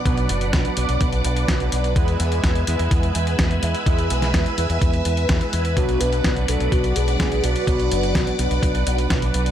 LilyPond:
<<
  \new Staff \with { instrumentName = "String machine" } { \time 4/4 \key b \dorian \tempo 4 = 126 << { <d'' fis'' d'''>1 | <e'' gis'' e'''>1~ | <e'' gis'' e'''>1 | <d'' fis'' d'''>1~ |
<d'' fis'' d'''>1 | } \\ { b'1~ | b'1~ | b'1~ | b'1~ |
b'1 | } >> }
  \new Staff \with { instrumentName = "Soft synth lead" } { \time 4/4 \key b \dorian r1 | r1 | r1 | fis'8 b'4 a'8 fis'8 gis'8 gis'8 fis'8~ |
fis'2~ fis'8 r4. | }
  \new Staff \with { instrumentName = "Analog polysynth" } { \time 4/4 \key b \dorian <b, fis b d' b'>4. <b, fis b d' b'>2~ <b, fis b d' b'>8 | <gis b e' b'>4. <gis b e' b'>2~ <gis b e' b'>8 | <gis b e' b'>4. <gis b e' b'>2~ <gis b e' b'>8 | <b, fis b d' b'>4. <b, fis b d' b'>2~ <b, fis b d' b'>8 |
<b, fis b d' b'>4. <b, fis b d' b'>2~ <b, fis b d' b'>8 | }
  \new Staff \with { instrumentName = "Fingered electric bass" } { \clef bass \time 4/4 \key b \dorian b,,8 fis,,8 b,,16 r16 b,,16 b,,16 b,,8 b,,8 b,,8 b,,8 | e,8 e,8 e,8 e,16 e,16 e,8 e,8 e,8 e,16 r16 | e,8 b,,8 e,16 r16 e,16 e,16 e,8 e,8 e,16 r16 e,8 | b,,8 b,,8 b,,8 b,,16 b,,16 b,,8 b,,8 b,,8 b,,16 r16 |
b,,8 fis,,8 b,,16 r16 b,,16 b,,16 b,,8 b,,8 b,,8 b,,8 | }
  \new DrumStaff \with { instrumentName = "Drums" } \drummode { \time 4/4 <hh bd>16 hh16 hh16 hh16 <hh bd sn>16 hh16 hh16 hh16 <hh bd>16 hh16 hh16 hh16 <hh bd sn>16 hh16 hh16 hh16 | <hh bd>16 hh16 hh16 hh16 <hh bd sn>16 hh16 hh16 hh16 <hh bd>16 hh16 hh16 hh16 <hh bd sn>16 hh16 hh16 hh16 | <hh bd>16 hh16 hh16 <hh sn>16 <hh bd sn>16 hh16 hh16 hh16 <hh bd>16 hh16 hh16 hh16 <hh bd sn>16 hh16 hh16 hh16 | <hh bd>16 hh16 hh16 hh16 <hh bd sn>16 hh16 hh16 hh16 <hh bd>16 hh16 hh16 hh16 <hh bd sn>16 hh16 hh16 hh16 |
<hh bd>16 hh16 hh16 hh16 <hh bd sn>16 hh16 hh16 hh16 <hh bd>16 hh16 hh16 hh16 <hh bd sn>16 hh16 hh16 hh16 | }
>>